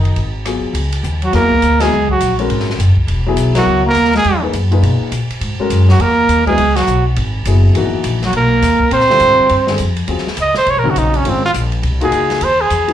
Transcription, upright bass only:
0.00 0.14 F#1 medium
0.16 0.60 G#1 medium
0.64 muted upright bass stroke soft
0.73 1.02 C#2 medium
1.03 1.32 D#2 medium
1.33 1.61 E2 medium
1.62 1.90 D2 medium
1.91 2.19 C#2 medium
2.20 2.49 A#1 medium
2.49 2.78 G#1 medium
2.79 2.95 F#1 medium
2.97 muted upright bass stroke soft
3.07 3.36 E1 medium
3.36 3.65 B1 medium
3.65 3.94 C#2 medium
3.96 4.24 D#2 medium
4.25 4.53 E2 medium
4.53 4.82 F#2 medium
4.82 4.99 B2 medium
5.00 muted upright bass stroke soft
5.11 5.28 A#2 medium
5.30 muted upright bass stroke soft
5.41 5.58 G#2 medium
5.59 muted upright bass stroke soft
5.70 5.98 F#2 medium
5.99 6.27 E2 medium
6.28 6.57 D#2 medium
6.57 6.86 C#2 medium
6.87 7.15 B1 medium
7.16 7.44 G#1 loud
7.46 7.74 F#1 medium
7.75 7.92 G#1 medium
7.93 muted upright bass stroke soft
8.04 8.32 A#1 medium
8.33 8.61 B1 medium
8.62 8.79 D#2 medium
8.91 9.19 A#2 medium
9.20 9.37 G#2 medium
9.39 muted upright bass stroke soft
9.50 9.78 G2 medium
9.79 10.07 F2 medium
10.08 10.25 D#2 medium
10.26 muted upright bass stroke soft
10.37 10.54 C#2 medium
10.56 muted upright bass stroke soft
10.66 10.76 C2 medium
10.76 10.85 A#1 medium
10.86 10.95 G#1 medium
10.96 11.24 A#1 medium
11.25 11.53 G#1 medium
11.54 11.82 A#1 medium
11.83 12.11 C2 loud
12.11 12.40 C#2 medium
12.41 12.69 D#2 medium
12.70 12.93 E2 medium

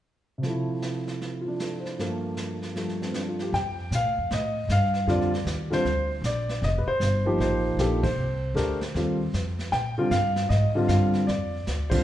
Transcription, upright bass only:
3.52 3.90 F2 medium
3.91 4.04 A#2 medium
4.04 4.17 A2 soft
4.18 4.30 F2 medium
4.31 4.68 A2 medium
4.69 5.06 G2 medium
5.07 5.45 F2 medium
5.45 5.84 D#2 medium
5.85 6.21 D2 medium
6.21 6.60 A#1 medium
6.62 6.85 F1 medium
6.86 muted upright bass stroke soft
7.00 7.38 G1 medium
7.38 7.76 A1 medium
7.77 8.15 A#1 medium
8.16 8.54 C2 medium
8.54 8.93 D2 medium
8.94 9.32 D#2 medium
9.33 9.71 F2 medium
9.72 10.10 A#2 medium
10.10 10.49 G2 medium
10.50 10.88 G#2 medium
10.89 11.26 G2 medium
11.28 11.65 F2 medium
11.67 12.04 D2 medium

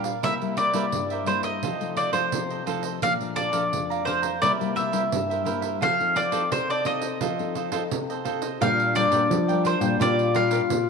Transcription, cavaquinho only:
0.04 0.22 A#4 soft
0.04 0.22 D5 soft
0.04 0.21 F5 soft
0.23 0.56 E4 medium
0.23 0.56 A#4 medium
0.23 0.57 C5 medium
0.23 0.57 E5 medium
0.57 0.73 E4 soft
0.57 0.74 A#4 soft
0.57 0.74 C5 soft
0.57 0.75 E5 soft
0.74 0.84 E4 medium
0.74 0.84 A#4 medium
0.74 0.85 C5 medium
0.74 0.85 E5 medium
1.11 1.26 A#4 soft
1.11 1.27 C5 medium
1.11 1.27 E5 medium
1.26 1.43 E4 medium
1.26 1.44 A#4 soft
1.26 1.44 C5 medium
1.26 1.43 E5 soft
1.44 1.62 A#4 soft
1.44 1.61 C5 soft
1.44 1.61 E5 soft
1.63 1.95 F4 medium
1.63 1.96 A4 medium
1.63 1.97 C5 medium
1.63 1.97 D#5 medium
1.96 2.12 F4 soft
1.96 2.12 A4 soft
1.96 2.13 C5 soft
1.96 2.13 D#5 medium
2.13 2.23 F4 medium
2.13 2.24 A4 medium
2.13 2.24 C5 medium
2.13 2.24 D#5 medium
2.51 2.66 A4 soft
2.51 2.66 C5 soft
2.51 2.67 D#5 soft
2.66 2.83 F4 medium
2.66 2.83 A4 medium
2.66 2.82 C5 medium
2.66 2.81 D#5 medium
2.82 3.01 A4 soft
2.82 3.00 C5 soft
2.82 3.00 D#5 soft
3.02 3.35 D5 medium
3.02 3.36 F5 medium
3.02 3.36 A#5 medium
3.35 3.51 A4 soft
3.35 3.51 D5 soft
3.35 3.52 F5 soft
3.35 3.52 A#5 soft
3.52 3.62 A4 medium
3.52 3.63 D5 medium
3.52 3.63 F5 medium
3.52 3.63 A#5 medium
3.90 4.05 D5 soft
3.90 4.06 F5 medium
3.90 4.06 A#5 medium
4.06 4.23 A4 soft
4.06 4.23 D5 medium
4.06 4.22 F5 medium
4.06 4.21 A#5 medium
4.22 4.40 D5 soft
4.22 4.40 F5 soft
4.22 4.40 A#5 soft
4.42 4.74 E4 medium
4.42 4.75 A#4 medium
4.42 4.75 C5 medium
4.42 4.76 E5 medium
4.75 4.91 E4 soft
4.75 4.91 A#4 soft
4.75 4.92 C5 medium
4.75 4.92 E5 medium
4.92 5.02 E4 medium
4.92 5.02 A#4 medium
4.92 5.03 C5 medium
4.92 5.03 E5 medium
5.30 5.45 A#4 soft
5.30 5.45 C5 soft
5.30 5.46 E5 soft
5.45 5.62 E4 medium
5.45 5.62 A#4 medium
5.45 5.62 C5 medium
5.45 5.60 E5 medium
5.62 5.80 A#4 soft
5.62 5.80 C5 soft
5.62 5.79 E5 soft
5.81 6.14 F4 medium
5.81 6.14 A4 medium
5.81 6.15 C5 medium
5.81 6.16 D#5 medium
6.15 6.31 F4 soft
6.15 6.31 A4 soft
6.15 6.31 C5 medium
6.15 6.32 D#5 soft
6.32 6.42 F4 medium
6.32 6.42 A4 medium
6.32 6.42 C5 medium
6.32 6.42 D#5 medium
6.70 6.85 A4 soft
6.70 6.85 C5 medium
6.70 6.85 D#5 medium
6.85 7.02 F4 soft
6.85 7.02 A4 soft
6.85 7.01 C5 soft
6.85 7.00 D#5 soft
7.01 7.20 A4 soft
7.01 7.19 C5 soft
7.01 7.19 D#5 soft
7.21 7.54 F4 medium
7.21 7.55 A4 medium
7.21 7.55 C5 medium
7.21 7.56 D#5 medium
7.55 7.71 F4 soft
7.55 7.71 A4 soft
7.55 7.72 C5 soft
7.55 7.72 D#5 medium
7.72 7.82 F4 medium
7.72 7.82 A4 medium
7.72 7.82 C5 medium
7.72 7.82 D#5 medium
8.10 8.24 A4 soft
8.10 8.25 C5 soft
8.10 8.25 D#5 soft
8.25 8.41 F4 medium
8.25 8.42 A4 medium
8.25 8.41 C5 medium
8.25 8.40 D#5 medium
8.42 8.59 A4 soft
8.42 8.59 C5 soft
8.42 8.59 D#5 soft
8.61 8.94 D4 medium
8.61 8.95 A#4 medium
8.61 8.95 D5 medium
8.61 8.95 G5 medium
8.95 9.10 D4 soft
8.95 9.10 A#4 soft
8.95 9.10 D5 medium
8.95 9.11 G5 soft
9.11 9.21 D4 medium
9.11 9.21 A#4 medium
9.11 9.21 D5 medium
9.11 9.22 G5 medium
9.48 9.63 A#4 medium
9.48 9.64 D5 medium
9.48 9.64 G5 medium
9.64 9.81 D4 medium
9.64 9.81 A#4 medium
9.64 9.80 D5 medium
9.64 9.80 G5 medium
9.81 9.99 A#4 soft
9.81 9.98 D5 soft
9.81 9.98 G5 soft
10.00 10.33 G4 medium
10.00 10.34 A#4 medium
10.00 10.34 D5 medium
10.00 10.34 F5 medium
10.34 10.50 G4 soft
10.34 10.50 A#4 soft
10.34 10.51 D5 soft
10.34 10.51 F5 medium
10.51 10.61 G4 medium
10.51 10.61 A#4 medium
10.51 10.61 D5 medium
10.51 10.61 F5 medium

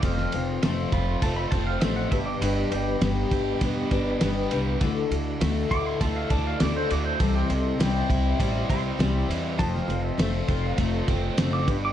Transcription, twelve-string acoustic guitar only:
0.02 0.33 F3 medium
0.02 0.33 A3 medium
0.02 0.33 C4 medium
0.02 0.34 F4 medium
0.02 0.33 C5 medium
0.34 0.63 C4 soft
0.34 0.64 F4 medium
0.34 0.63 C5 medium
0.63 1.23 F3 medium
0.63 1.21 A3 medium
0.63 1.23 C4 medium
0.63 1.24 F4 medium
0.63 1.24 C5 medium
1.23 1.53 A3 medium
1.23 1.54 C4 medium
1.23 1.54 F4 medium
1.23 1.51 C5 medium
1.53 1.83 C4 soft
1.53 1.84 F4 soft
1.53 1.83 C5 medium
1.83 2.13 F3 medium
1.83 2.13 A3 medium
1.83 2.13 C4 medium
1.83 2.14 F4 medium
1.83 2.12 C5 medium
2.12 2.42 D4 soft
2.12 2.42 G4 soft
2.12 2.42 B4 medium
2.42 2.72 G3 medium
2.42 2.73 D4 medium
2.42 2.72 G4 medium
2.42 2.70 B4 medium
2.71 3.02 D4 soft
2.71 3.02 G4 soft
2.71 3.01 B4 medium
3.02 3.60 G3 medium
3.02 3.62 D4 medium
3.02 3.63 G4 medium
3.02 3.63 B4 medium
3.61 3.91 G3 medium
3.61 3.92 D4 medium
3.61 3.92 G4 medium
3.61 3.91 B4 medium
3.92 4.21 D4 medium
3.92 4.22 G4 medium
3.92 4.22 B4 medium
4.21 4.51 G3 medium
4.21 4.52 D4 medium
4.21 4.51 G4 medium
4.21 4.50 B4 loud
4.51 4.82 D4 soft
4.51 4.82 G4 medium
4.51 4.81 B4 medium
4.82 5.11 D3 medium
4.82 5.12 A3 medium
4.82 5.12 E4 medium
4.82 5.12 F#4 medium
4.82 5.10 A4 medium
5.11 5.41 E4 soft
5.11 5.42 F#4 medium
5.11 5.41 A4 medium
5.41 6.00 D3 medium
5.41 5.99 A3 medium
5.41 6.01 E4 medium
5.41 6.01 F#4 medium
5.41 6.02 A4 medium
6.00 6.30 A3 medium
6.00 6.31 E4 medium
6.00 6.31 F#4 medium
6.00 6.30 A4 medium
6.31 6.60 E4 soft
6.31 6.60 F#4 soft
6.31 6.61 A4 medium
6.60 6.90 D3 medium
6.60 6.90 A3 medium
6.60 6.91 E4 medium
6.60 6.91 F#4 medium
6.60 6.88 A4 medium
6.90 7.21 E4 soft
6.90 7.21 F#4 soft
6.90 7.20 A4 medium
7.20 7.50 C3 medium
7.20 7.50 E3 medium
7.20 7.50 G3 medium
7.20 7.50 C4 medium
7.20 7.49 E4 medium
7.20 7.48 C5 loud
7.49 7.79 G3 soft
7.49 7.80 C4 medium
7.49 7.80 E4 medium
7.49 7.79 C5 medium
7.79 8.39 C3 medium
7.79 8.39 E3 medium
7.79 8.37 G3 medium
7.79 8.38 C4 medium
7.79 8.39 E4 medium
7.79 8.40 C5 medium
8.38 8.69 G3 medium
8.38 8.69 C4 medium
8.38 8.69 E4 medium
8.42 8.68 C5 medium
8.69 8.98 G3 soft
8.69 8.98 C4 medium
8.69 8.99 E4 soft
8.69 8.99 C5 soft
8.98 9.28 C3 medium
8.98 9.29 E3 medium
8.98 9.29 G3 medium
8.98 9.29 C4 medium
8.98 9.28 E4 medium
8.98 9.27 C5 medium
9.28 9.58 G3 soft
9.28 9.58 C4 soft
9.28 9.59 E4 soft
9.28 9.59 C5 medium
9.58 9.88 F3 medium
9.58 9.89 A3 medium
9.58 9.89 C4 medium
9.58 9.88 F4 medium
9.58 9.87 C5 medium
9.88 10.18 C4 soft
9.88 10.19 F4 medium
9.88 10.18 C5 medium
10.18 10.78 F3 medium
10.18 10.77 A3 medium
10.18 10.78 C4 medium
10.18 10.79 F4 medium
10.18 10.79 C5 medium
10.78 11.08 A3 medium
10.78 11.09 C4 medium
10.78 11.08 F4 medium
10.82 11.06 C5 medium
11.07 11.37 C4 soft
11.07 11.38 F4 soft
11.07 11.38 C5 medium
11.37 11.68 F3 medium
11.37 11.68 A3 medium
11.37 11.68 C4 medium
11.37 11.69 F4 medium
11.37 11.67 C5 medium
11.67 11.93 D4 soft
11.67 11.93 G4 soft
11.67 11.93 B4 medium

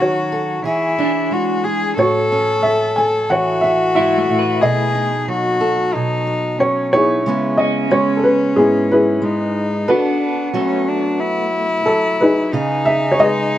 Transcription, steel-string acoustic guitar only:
0.00 0.60 D#3 medium
0.00 0.65 F#3 medium
0.00 0.61 C#4 soft
0.00 0.31 A4 medium
0.32 0.62 A4 medium
0.64 1.93 E3 medium
0.64 1.64 G#4 medium
0.98 1.93 D4 soft
1.31 1.93 G#3 medium
1.65 1.97 G#4 medium
1.97 3.95 A2 medium
1.97 2.98 A4 medium
2.32 4.58 C#4 medium
2.98 4.58 A4 medium
3.30 4.58 E3 medium
3.64 4.58 F#4 medium
3.97 4.29 G#2 medium
4.29 4.62 A2 medium
4.62 5.94 B2 medium
4.62 5.60 A4 medium
4.95 6.92 D#4 medium
5.28 6.59 F#3 medium
5.61 7.22 A4 medium
5.95 7.22 B2 medium
6.27 7.22 F#4 medium
6.60 7.26 F#3 medium
6.94 7.22 D#4 medium
7.26 8.58 C#3 medium
7.26 7.90 G#3 medium
7.26 12.56 B3 medium
7.26 7.93 E4 medium
7.26 9.88 B4 medium
7.91 9.21 G#3 medium
8.56 9.89 G#2 medium
9.22 9.85 G#3 medium
9.88 12.48 A4 medium
10.53 11.85 F#3 medium
10.53 12.49 F#4 medium
11.86 12.53 F#3 medium
12.53 13.58 C#3 medium
12.53 13.58 G#4 medium
13.19 13.58 G#3 medium

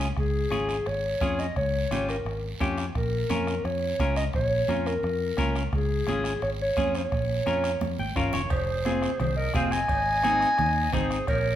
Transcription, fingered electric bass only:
0.00 0.10 C#2 medium
0.17 0.45 C#2 medium
0.52 0.80 G#1 medium
0.87 1.15 G#1 medium
1.21 1.49 F2 medium
1.56 1.84 C#2 medium
1.91 2.19 G#1 medium
2.25 2.53 G#1 medium
2.61 2.88 F2 medium
2.95 3.23 A#1 medium
3.30 3.58 F2 medium
3.65 3.92 F2 medium
3.99 4.27 C#2 medium
4.34 4.62 A#1 medium
4.68 4.96 F2 medium
5.03 5.31 F2 medium
5.38 5.66 C#2 medium
5.73 6.01 C#2 medium
6.08 6.35 G#1 medium
6.42 6.70 G#1 medium
6.77 7.05 F2 medium
7.12 7.40 A#1 medium
7.47 7.75 F2 medium
7.82 7.96 F2 medium
7.99 8.15 G#1 medium
8.16 8.32 G1 medium
8.34 8.50 F1 medium
8.51 9.06 F1 medium
9.20 9.48 C2 medium
9.54 9.82 F1 medium
9.89 10.45 G#1 medium
10.59 10.86 D#2 loud
10.93 11.21 G#1 medium
11.28 11.55 A#1 medium

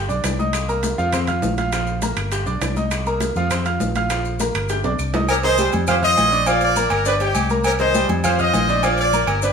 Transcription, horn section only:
5.30 5.37 G4 medium
5.30 5.36 A#4 loud
5.44 5.72 G#4 medium
5.44 5.71 C5 loud
5.90 5.96 G4 medium
5.90 5.96 C5 loud
6.04 6.45 C5 medium
6.04 6.44 D#5 loud
6.48 6.63 A#4 medium
6.48 6.62 D5 loud
6.63 6.90 A#4 medium
6.63 6.90 D5 loud
6.92 7.07 G4 medium
6.92 7.07 A#4 loud
7.07 7.14 G4 medium
7.07 7.14 B4 loud
7.22 7.50 D#4 medium
7.22 7.49 G4 loud
7.66 7.73 G4 medium
7.66 7.73 A#4 loud
7.81 8.08 G#4 medium
7.81 8.08 C5 loud
8.25 8.39 G4 medium
8.25 8.38 C5 loud
8.41 8.82 C5 medium
8.41 8.81 D#5 loud
8.84 8.99 A#4 medium
8.84 8.98 D5 loud
8.99 9.27 A#4 medium
8.99 9.26 D5 loud
9.29 9.43 G4 medium
9.29 9.43 A#4 loud
9.44 9.53 G4 medium
9.44 9.53 B4 loud

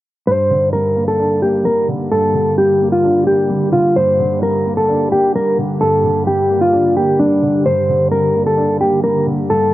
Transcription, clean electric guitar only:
0.27 0.70 C5 loud
0.73 1.06 A#4 medium
1.08 1.40 A4 medium
1.42 1.64 G4 medium
1.65 1.87 A#4 medium
2.12 2.55 A4 loud
2.58 2.90 G4 medium
2.92 3.25 F4 medium
3.27 3.70 G4 medium
3.73 3.95 F4 medium
3.96 4.40 C5 loud
4.43 4.75 A#4 medium
4.77 5.10 A4 medium
5.12 5.33 G4 medium
5.36 5.57 A#4 medium
5.81 6.24 A4 medium
6.27 6.60 G4 medium
6.61 6.94 F4 medium
6.97 7.18 G4 medium
7.19 7.63 D4 medium
7.66 8.09 C5 loud
8.11 8.44 A#4 medium
8.47 8.79 A4 medium
8.81 9.02 G4 medium
9.04 9.25 A#4 medium
9.50 9.74 A4 loud

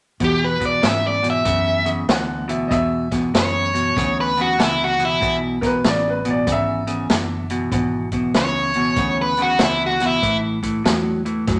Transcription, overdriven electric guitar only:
0.24 0.43 G4 medium
0.45 0.63 B4 medium
0.66 0.84 D5 medium
0.86 1.05 E5 medium
1.07 1.26 D5 medium
1.30 1.88 E5 medium
3.38 4.17 C#5 medium
4.21 4.39 B4 medium
4.41 4.60 F#4 medium
4.63 4.81 E4 medium
4.84 5.02 F#4 medium
5.05 5.36 E4 medium
8.37 9.17 C#5 medium
9.22 9.40 B4 medium
9.42 9.61 F#4 medium
9.64 9.82 E4 medium
9.86 10.04 F#4 medium
10.06 10.37 E4 medium

